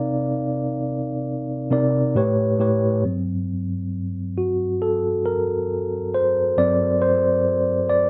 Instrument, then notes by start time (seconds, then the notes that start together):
tine electric piano
Already playing: C3 C4 D#4 A#4 D5 F5
1.70 C3 C4 D#4 A#4 D5
2.15 A2 A3 G4 B4 C#5
2.59 A2 A3 G4 B4 C#5
3.04 G2 F#3 C4
4.38 F#4
4.82 A4
5.26 A#4
6.14 C5
6.57 G2 F#3 C4 D5
7.02 C5
7.90 D5